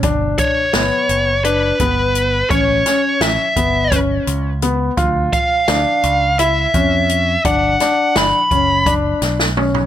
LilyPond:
<<
  \new Staff \with { instrumentName = "Lead electric guitar" } { \time 7/8 \key g \lydian \tempo 4 = 85 r8 cis''4. b'4. | cis''4 e''4 r4. | r8 f''4. e''4. | fis''4 b''4 r4. | }
  \new Staff \with { instrumentName = "Grand piano" } { \time 7/8 \key g \lydian d'4 b4 d'8 b4 | cis'8 cis'4 b8 cis'4 b8 | f'4 d'4 e'8 cis'4 | d'8 d'4 cis'8 d'4 cis'8 | }
  \new Staff \with { instrumentName = "Picked electric bass" } { \clef bass \time 7/8 \key g \lydian g,,8 r8 g,,16 r16 fis,,4 g,,4 | a,,8 r8 a,,16 r16 g,,4 cis,4 | d,8 r8 d,16 r16 cis,4 f,4 | g,,8 r8 g,,16 r16 fis,,4 b,,4 | }
  \new DrumStaff \with { instrumentName = "Drums" } \drummode { \time 7/8 <hh bd>8 <hh bd>8 <hh sn>8 hh8 hh8 <hh bd>8 hh8 | <hh bd>8 <hh sn>8 <hh sn>8 <hh bd>8 <hh bd>8 hh8 hh8 | <hh bd>8 <hh bd>8 <hh sn>8 hh8 hh8 <hh bd>8 hh8 | <hh bd>8 <hh sn>8 <hh sn>8 <hh bd>8 <hh bd>8 <hh sn>16 sn16 toml16 tomfh16 | }
>>